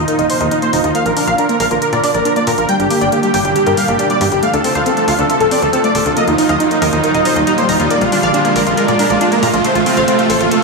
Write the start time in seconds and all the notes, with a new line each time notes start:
Already playing: A#2 D#3 F3 D#4 F4, riser
0.08 D#4 A#4, closed hi-hat
0.19 D#1 D#4 D#5, closed hi-hat
0.30 D#4 C5, open hi-hat
0.40 D#2 D#4 D#5, closed hi-hat
0.51 D#4, closed hi-hat
0.62 A#3 C5, closed hi-hat
0.73 D#1 D#4 A#5, open hi-hat
0.84 D#2 D#4 F4, closed hi-hat
0.95 D3 A#3 D4 F5, closed hi-hat
1.06 A#1 F4 A#4, closed hi-hat
1.17 D4 A#4, open hi-hat
1.27 A#1 F5, closed hi-hat
1.38 D4 A#4, closed hi-hat
1.49 A#3 A#4, closed hi-hat
1.60 A#1 A#4 F5, open hi-hat
1.71 A#1 F4 A#4, closed hi-hat
1.82 A#4, closed hi-hat
1.93 A#2 A#4 D5, closed hi-hat
2.03 D4 D5, open hi-hat
2.14 A#1 A#4 D5, closed hi-hat
2.25 D4 A#4, closed hi-hat
2.36 A#3 D5, closed hi-hat
2.47 A#2 A#4 A#5, open hi-hat
2.58 A#1 F4 A#4, closed hi-hat
2.69 A#2 D3 G3 G4 G5, closed hi-hat
2.80 G1 D4 G4, closed hi-hat
2.90 A#3 G4, open hi-hat
3.01 G1 D5 G5, closed hi-hat
3.12 A#3 G4, closed hi-hat
3.23 G3 G4, closed hi-hat
3.34 G1 G4 G5, open hi-hat
3.45 G1 D4 G4, closed hi-hat
3.56 G4, closed hi-hat
3.66 G2 G4 A#4, closed hi-hat
3.77 G3 F5, open hi-hat
3.88 G1 A#3 G4, closed hi-hat
3.99 D4 G4, closed hi-hat
4.10 G3 D5, closed hi-hat
4.21 G2 G3 G4, open hi-hat
4.32 G1 G4, closed hi-hat
4.43 C3 F3 A3 F4 F5, closed hi-hat
4.53 D2 D4 A4, closed hi-hat
4.64 C4 A4, open hi-hat
4.75 D2 C5 F5, closed hi-hat
4.86 C4 A4, closed hi-hat
4.97 A3 A4, closed hi-hat
5.08 D2 F4 F5, open hi-hat
5.19 D2 D4 A4, closed hi-hat
5.30 F4 A4, closed hi-hat
5.40 D1 A4, closed hi-hat
5.51 C4 D5, open hi-hat
5.62 D2 A4, closed hi-hat
5.73 C4 A4, closed hi-hat
5.84 A3 D5, closed hi-hat
5.95 D1 A4 D5, open hi-hat
6.06 D2 D4 A4, closed hi-hat
6.17 A#2 D#3 A#3 D#4 D#5, closed hi-hat
6.27 D#2 D#4 F4, closed hi-hat
6.38 D#4, open hi-hat
6.49 D#2 D#5 F5, closed hi-hat
6.60 D#4, closed hi-hat
6.71 A#3 D#4, closed hi-hat
6.82 D#2 A#4 D#5, open hi-hat
6.93 D#2 D#4 F4, closed hi-hat
7.04 D#4 A#4, closed hi-hat
7.14 D#1 D#4 D#5, closed hi-hat
7.25 D#4 C5, open hi-hat
7.36 D#2 D#4 D#5, closed hi-hat
7.47 D#4, closed hi-hat
7.58 A#3 C5, closed hi-hat
7.69 D#1 D#4 A#5, open hi-hat
7.80 D#2 D#4 F4, closed hi-hat
7.90 D3 A#3 D4 D5, closed hi-hat
8.01 A#1 F4, closed hi-hat
8.12 D4 F4, open hi-hat
8.23 A#1 D5 F5, closed hi-hat
8.34 D4 F4, closed hi-hat
8.45 A#3 F4, closed hi-hat
8.56 A#1 A#4 D5, open hi-hat
8.67 A#1 F4, closed hi-hat
8.77 F4 A#4, closed hi-hat
8.88 A#2 F4 D5, closed hi-hat
8.99 D4 A#4, open hi-hat
9.10 A#1 F4 D5, closed hi-hat
9.21 D4 F4, closed hi-hat
9.32 A#3 A#4, closed hi-hat
9.43 A#2 F4 A#5, open hi-hat
9.54 A#1 F4, closed hi-hat
9.64 A2 C3 A3 C4 F4 C5, closed hi-hat
9.75 A1 F4, closed hi-hat
9.86 C4 F4, open hi-hat
9.97 A1 C5 F5, closed hi-hat
10.08 C4 F4, closed hi-hat
10.19 A3 F4, closed hi-hat
10.30 A1 A4 C5, open hi-hat
10.40 A1 F4, closed hi-hat
10.51 F4 A4, closed hi-hat, reverse cymbal